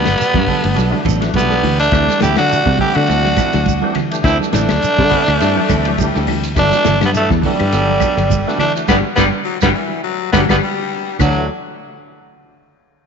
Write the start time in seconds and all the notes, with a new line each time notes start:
Already playing: G3 B3
0.05 G1 F#3, snare, ride bell, shekere
0.18 muted fingered electric bass stroke, ride bell, shekere
0.34 G2 G3, kick, snare, high conga
0.46 F#3 B3 D4 A4, kick, open hi-hat, low conga, shekere
0.63 G1 A3, ride bell
0.75 B1 F#3 B3 D4 F#4 A4, ride bell, shekere
0.91 D3 E3 A3 D4 F#4, high conga
1.04 A1 E3 F#3 B3 D4 A4, kick, ride bell, high conga
1.09 shekere
1.20 E3 F#3 A3 D4 F#4, snare, ride bell
1.24 shekere
1.34 B1 G3 B3, kick, ride bell, high conga
1.38 shekere
1.50 B3 D4 A4, snare, high conga
1.63 D2 E3, open hi-hat, low conga, shekere
1.79 A3 D4, ride bell, shekere
1.91 D2 D3 E3 G3 A3 C4 D4 E4 G4 A4, kick, ride bell, claves, shekere
2.08 snare, high conga, shekere
2.20 D2 E3 G3 C4 E4 G4 A4, snare, ride bell, high conga, shekere
2.36 D3 F#3 D4 F#4, snare, ride bell, claves, shekere
2.49 E3 A3 D4 G4, ride bell, shekere
2.66 C3 G3, kick, high conga
2.78 G3 C4 E4 G4 A4, kick, open hi-hat, low conga, shekere
2.95 D3 A3 D4 F#4, ride bell, claves
3.07 D2 G3 C4 E4 A4, ride bell, shekere
3.24 F#3, snare, high conga
3.36 E3 G3 C4 E4 A4, kick, snare, ride bell, high conga, claves, shekere
3.53 D2 F#3, snare, ride bell, shekere
3.66 kick, ride bell, high conga, shekere
3.82 E3 A3 C4 D4 E4 G4 A4, high conga
3.95 E3, ride bell, low conga, claves, shekere
4.11 E3 A3 D4 G4, ride bell, shekere
4.23 D2 D3 G3 C4 E4 A4, kick, ride bell, claves, shekere
4.40 high conga, shekere
4.53 A1 E3 G3 A3 C4 D4 E4 A4, snare, ride bell, high conga, low conga, shekere
4.69 D2 F#3, snare, ride bell, claves, shekere
4.82 muted fingered electric bass stroke, ride bell, shekere
4.98 D3 G3, kick, snare, high conga
5.09 G3 B3 C4 E4 A4, kick, open hi-hat, low conga
5.13 shekere
5.28 D2 A3, ride bell, claves
5.40 G2 G3 A3 C4 D4 E4 G4 A4, ride bell, shekere
5.56 E3 F#3 A3 D4 G4, high conga
5.69 D2 E3 G3 C4 E4 A4, kick, snare, ride bell, high conga, claves, shekere
5.85 E3 F#3 A3 D4 G4, ride bell, shekere
5.98 G3, kick, ride bell, high conga, low conga, shekere
6.14 D2 C4 E4 A4, snare
6.27 E3, open hi-hat, low conga, claves, shekere
6.44 ride bell, shekere
6.55 G1 D3 E3 F#3 A3 B3 D4 F#4 A4, kick, ride bell, claves, shekere
6.60 A3
6.72 high conga, shekere
6.85 G1 E3 F#3 B3 D4 A4, snare, ride bell, high conga, low conga, shekere
7.01 G2 F#3 G3, snare, ride bell, claves, shekere
7.05 B3
7.13 E3 F#3 A3 D4 E4, ride bell, shekere
7.30 E2 G3, kick, snare, high conga
7.42 D3 F#3 B3 D4 A4, kick, open hi-hat, low conga, shekere
7.46 G3
7.59 G2, ride bell, claves
7.72 G1 F#3 B3 D4 A4, ride bell, shekere
7.88 F#3
8.00 F#3 B3 D4 A4, muted clean electric guitar stroke, kick, ride bell, high conga, claves, shekere
8.17 G1 F#3, ride bell, shekere
8.30 kick, ride bell, high conga, low conga, shekere
8.47 E3 A3 B3 D4 F#4 A4, snare
8.59 E3 A3 D4, snare, ride bell, low conga, claves, shekere
8.75 E3 A3 D4 F#4, ride bell, shekere
8.88 G1 D3 F#3 G3 B3 D4 F#4 G4, kick, snare, high conga, claves, shekere
9.16 G1 D3 F#3 G3 B3 D4 F#4 G4, kick, snare, high conga, claves, shekere
9.44 F#3
9.61 G1 D3 F#3 G3 B3 D4 F#4 G4, kick, snare, high conga, claves, shekere
9.75 E3
10.04 F#3
10.32 G1 D3 F#3 G3 B3 D4 F#4 G4, kick, snare, high conga, claves, shekere
10.49 G1 D3 F#3 G3 B3 D4 F#4 G4, kick, snare, high conga, claves, shekere
10.63 G3
11.19 D2 D3 E3 F#3 A3 D4 F#4, kick, crash, low conga, claves, shekere